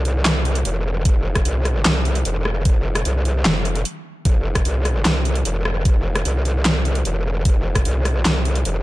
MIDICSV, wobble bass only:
0, 0, Header, 1, 2, 480
1, 0, Start_track
1, 0, Tempo, 400000
1, 1265, Time_signature, 4, 2, 24, 8
1, 10590, End_track
2, 0, Start_track
2, 0, Title_t, "Wobble bass"
2, 0, Program_c, 0, 39
2, 0, Note_on_c, 0, 36, 98
2, 285, Note_off_c, 0, 36, 0
2, 303, Note_on_c, 0, 36, 100
2, 765, Note_off_c, 0, 36, 0
2, 783, Note_on_c, 0, 29, 98
2, 1245, Note_off_c, 0, 29, 0
2, 1264, Note_on_c, 0, 29, 99
2, 1725, Note_off_c, 0, 29, 0
2, 1744, Note_on_c, 0, 36, 96
2, 2205, Note_off_c, 0, 36, 0
2, 2224, Note_on_c, 0, 36, 100
2, 2685, Note_off_c, 0, 36, 0
2, 2704, Note_on_c, 0, 29, 101
2, 3165, Note_off_c, 0, 29, 0
2, 3185, Note_on_c, 0, 29, 95
2, 3646, Note_off_c, 0, 29, 0
2, 3665, Note_on_c, 0, 36, 98
2, 4126, Note_off_c, 0, 36, 0
2, 4145, Note_on_c, 0, 29, 102
2, 4606, Note_off_c, 0, 29, 0
2, 5105, Note_on_c, 0, 29, 95
2, 5566, Note_off_c, 0, 29, 0
2, 5584, Note_on_c, 0, 36, 98
2, 6045, Note_off_c, 0, 36, 0
2, 6063, Note_on_c, 0, 36, 103
2, 6525, Note_off_c, 0, 36, 0
2, 6543, Note_on_c, 0, 29, 104
2, 7005, Note_off_c, 0, 29, 0
2, 7024, Note_on_c, 0, 29, 97
2, 7485, Note_off_c, 0, 29, 0
2, 7503, Note_on_c, 0, 36, 97
2, 7965, Note_off_c, 0, 36, 0
2, 7983, Note_on_c, 0, 36, 99
2, 8445, Note_off_c, 0, 36, 0
2, 8463, Note_on_c, 0, 29, 104
2, 8925, Note_off_c, 0, 29, 0
2, 8944, Note_on_c, 0, 29, 100
2, 9405, Note_off_c, 0, 29, 0
2, 9423, Note_on_c, 0, 36, 100
2, 9885, Note_off_c, 0, 36, 0
2, 9905, Note_on_c, 0, 36, 100
2, 10366, Note_off_c, 0, 36, 0
2, 10384, Note_on_c, 0, 29, 97
2, 10590, Note_off_c, 0, 29, 0
2, 10590, End_track
0, 0, End_of_file